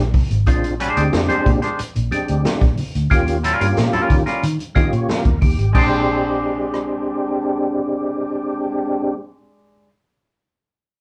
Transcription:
Already playing: fingered electric bass A#1
0.14 kick, open hi-hat, low conga
0.31 fingered electric bass G#1, closed hi-hat
0.46 fingered electric bass A#1, tonewheel organ G#3 C4 D4 F4, kick, closed hi-hat, muted conga
0.64 closed hi-hat, muted conga
0.80 clean electric guitar G#3 D4 G4 C5, closed hi-hat
0.96 fingered electric bass D2, tonewheel organ G#3 C4 D4 G4, closed hi-hat
1.13 fingered electric bass F2, snare
1.29 clean electric guitar G#3 D4 G4 C5, closed hi-hat, high conga
1.46 fingered electric bass A#2, kick, closed hi-hat, low conga
1.62 clean electric guitar G#3 D4 G4 C5, snare, closed hi-hat
1.79 muted fingered electric bass stroke, closed hi-hat, muted conga
1.95 fingered electric bass A#1, closed hi-hat, muted conga
2.11 tonewheel organ G#3 C4 D4 G4, closed hi-hat, high conga
2.28 fingered electric bass D2, closed hi-hat
2.45 muted fingered electric bass stroke, snare, muted conga
2.61 fingered electric bass A#1, kick, snare, closed hi-hat, muted conga, high conga
2.77 open hi-hat, low conga
2.95 fingered electric bass D2, closed hi-hat
3.10 fingered electric bass D#2, tonewheel organ A#3 C#4 F4 G4, kick, closed hi-hat, muted conga
3.27 closed hi-hat, muted conga
3.44 clean electric guitar G3 C#4 F4 A#4, closed hi-hat
3.60 fingered electric bass G2, tonewheel organ A#3 C#4 F4 G4, closed hi-hat
3.76 fingered electric bass A#2, snare, muted conga
3.93 clean electric guitar G3 C#4 F4 A#4, closed hi-hat, muted conga, high conga
4.10 fingered electric bass D#3, kick, closed hi-hat, low conga
4.26 clean electric guitar G3 C#4 F4 A#4, snare, closed hi-hat
4.43 fingered electric bass D#3, closed hi-hat, muted conga
4.59 closed hi-hat, muted conga
4.75 fingered electric bass D#3, tonewheel organ A#3 C#4 F4 G4 D#5, kick, closed hi-hat, high conga
4.92 fingered electric bass A#2, tonewheel organ C#5, closed hi-hat
5.09 tonewheel organ A#4, snare, high conga
5.25 fingered electric bass D#2, kick, snare, closed hi-hat, high conga
5.41 fingered electric bass D#2, tonewheel organ G4, kick, open hi-hat, low conga
5.59 fingered electric bass G#1, closed hi-hat
5.73 fingered electric bass A#1, clean electric guitar G#3 D4 G4, tonewheel organ G#3 C4 D4 G4, kick, crash, high conga
5.78 clean electric guitar C5
6.74 cross-stick

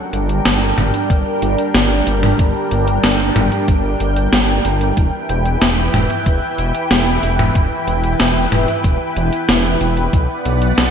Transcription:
Already playing: analog synth pad G3 D4 A#4 G5
0.13 detuned saw bass G1, closed hi-hat
0.29 closed hi-hat
0.45 detuned saw bass G1, snare, closed hi-hat
0.78 detuned saw bass G1, closed hi-hat, mid tom
0.94 closed hi-hat
1.10 detuned saw bass G1, kick, closed hi-hat
1.42 detuned saw bass G1, closed hi-hat
1.58 closed hi-hat
1.75 detuned saw bass G1, snare, closed hi-hat
2.07 detuned saw bass G1, closed hi-hat
2.23 closed hi-hat, mid tom
2.39 detuned saw bass G1, kick, closed hi-hat
2.71 detuned saw bass G1, closed hi-hat
2.88 closed hi-hat
3.04 detuned saw bass G1, snare, closed hi-hat
3.20 closed hi-hat
3.36 detuned saw bass G1, closed hi-hat, mid tom
3.52 closed hi-hat
3.68 detuned saw bass G1, kick, closed hi-hat
4.00 detuned saw bass G1, closed hi-hat
4.16 closed hi-hat
4.33 detuned saw bass G1, snare, closed hi-hat
4.65 detuned saw bass G1, closed hi-hat
4.81 closed hi-hat
4.97 detuned saw bass E1, analog synth pad E3 E4 B4, kick, closed hi-hat
5.29 detuned saw bass E1, closed hi-hat
5.46 closed hi-hat
5.62 detuned saw bass E1, snare, closed hi-hat
5.94 detuned saw bass E1, closed hi-hat, mid tom
6.10 closed hi-hat
6.26 detuned saw bass E1, kick, closed hi-hat
6.58 detuned saw bass E1, closed hi-hat
6.75 closed hi-hat
6.91 detuned saw bass E1, snare, closed hi-hat
7.23 detuned saw bass E1, closed hi-hat
7.39 closed hi-hat, mid tom
7.55 detuned saw bass E1, kick, closed hi-hat
7.87 detuned saw bass E1, closed hi-hat
8.04 closed hi-hat
8.20 detuned saw bass E1, snare, closed hi-hat
8.52 detuned saw bass E1, closed hi-hat, mid tom
8.68 closed hi-hat
8.84 detuned saw bass E1, kick, closed hi-hat
9.17 detuned saw bass E1, closed hi-hat
9.33 closed hi-hat
9.49 detuned saw bass E1, snare, closed hi-hat
9.81 detuned saw bass E1, closed hi-hat
9.97 closed hi-hat
10.13 detuned saw bass B1, analog synth pad B3 D5 F#5, kick, closed hi-hat
10.46 detuned saw bass B1, closed hi-hat
10.62 closed hi-hat
10.78 detuned saw bass B1, snare, closed hi-hat

